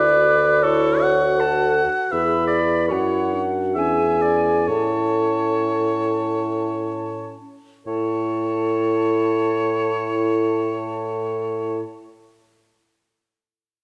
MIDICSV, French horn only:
0, 0, Header, 1, 2, 480
1, 0, Start_track
1, 0, Key_signature, 3, "major"
1, 0, Tempo, 753769
1, 1353, Time_signature, 3, 2, 24, 8
1, 1846, Tempo, 858369
1, 2326, Tempo, 927357
1, 2806, Tempo, 1008403
1, 3286, Tempo, 1083032
1, 4246, Tempo, 1050788
1, 6976, End_track
2, 0, Start_track
2, 0, Title_t, "French horn"
2, 0, Program_c, 0, 60
2, 0, Note_on_c, 0, 74, 85
2, 398, Note_on_c, 0, 73, 82
2, 407, Note_off_c, 0, 74, 0
2, 878, Note_on_c, 0, 69, 74
2, 888, Note_off_c, 0, 73, 0
2, 1186, Note_off_c, 0, 69, 0
2, 1352, Note_on_c, 0, 71, 77
2, 1848, Note_on_c, 0, 66, 64
2, 1856, Note_off_c, 0, 71, 0
2, 2329, Note_on_c, 0, 68, 58
2, 2336, Note_off_c, 0, 66, 0
2, 2808, Note_on_c, 0, 69, 50
2, 2815, Note_off_c, 0, 68, 0
2, 4008, Note_off_c, 0, 69, 0
2, 4249, Note_on_c, 0, 69, 50
2, 6044, Note_off_c, 0, 69, 0
2, 6976, End_track
0, 0, End_of_file